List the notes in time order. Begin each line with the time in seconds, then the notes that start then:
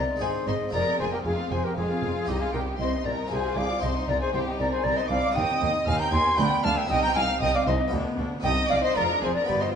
Already playing: C3 C4 D#4 G4 D5
0.09 D#4
0.16 G#3 C4 D#4
0.20 G#1 G#2 D#4 G#4 C5 G#5
0.36 C4
0.47 G#1 G#2 D#4 C5 D#5 C6
0.61 C4
0.69 C4 F4 G#4
0.73 F1 F2 G#3 A#4 D5 A#5
0.86 C4
0.99 F1 F2 G#3 G#4 C5 G#5
1.12 C4 G4 A#4 G5
1.25 F1 F2 G#3 F4 G#4 F5
1.39 C4
1.51 F1 F2 G#3 G#4 C5 G#5
1.63 C4 G4 A#4 G5
1.76 F1 F2 G#3 F4 G#4 F5
1.90 C4
2.02 F1 F2 G#3
2.15 C4
2.25 C2 C4 D#4 G4 D#5
2.29 C2 C4
2.41 D#4 F4 G#4 F5
2.53 C2 C4 G4 A#4 G5
2.66 D#4
2.79 C2 C4 C5 D#5 C6
2.92 D#4
3.05 C2 C4 A#4 D5 A#5
3.18 D#4
3.27 C2 C4 F4 G#4 G#5
3.31 C2 G#4 C5
3.44 F4
3.56 C2 G#4 D5 F5 D6
3.70 F4
3.79 C2 C4 D#4 G4 C5 D#5 C6
3.83 C2
3.96 D#4
4.08 C2 C4 A#4 D5 A#5
4.21 D#4 G#4 C5 G#5
4.33 C2 C4 G4 C5 G5
4.47 D#4
4.58 C2 C4 A#4 D5 A#5
4.71 D#4 G#4 C5 G#5
4.84 C2 C4 A#4 D5 A#5
4.97 D#4 C5 D#5 C6
5.10 C2 C4 D5 F5 D6
5.25 D#4
5.31 C4 G4
5.36 D#2 D#4 D#5 G5 D#6
5.50 C4
5.61 D#2 D#4
5.75 C4
5.87 D#2 D#4 F5 G#5 F6
6.00 C4 G5 A#5 G6
6.12 D#2 D#4 G#5 C6 G#6
6.26 C4
6.34 B3 D4 F4 B5
6.38 D2 D4 G5 G6
6.51 B3
6.63 D2 D4 F5 A5 F6
6.77 B3 E5 G5 E6
6.85 C4 D#4 G4
6.89 C2 D#4 D#5 G5 D#6
7.03 C4 G5 A#5 G6
7.15 C2 D#4 F5 G#5 F6
7.29 C4
7.41 C2 D#4 D#5 G5 D#6
7.54 C4 D5 F5 D6
7.67 C2 D#4 C5 D#5 C6
7.80 C4
7.88 B3 F4 G4
7.92 D2 D4
8.06 B3
8.18 D2 D4
8.32 B3
8.40 C4 D#4 G4 G5 D#6
8.44 C2 D#4 D#5
8.58 C4
8.69 C2 D#4 D5 F5 D6
8.83 C4 C5 D#5 C6
8.92 D4 F4 G#4 A#5
8.96 F1 F2 F4 A#4 D5
9.09 D4
9.22 F1 F2 F4 G#4 C5 G#5
9.35 D4 A#4 D5 A#5
9.45 B3 F4 G4 D5 B5
9.49 G1 G2 G4 B4
9.61 F4 C5 D#5 C6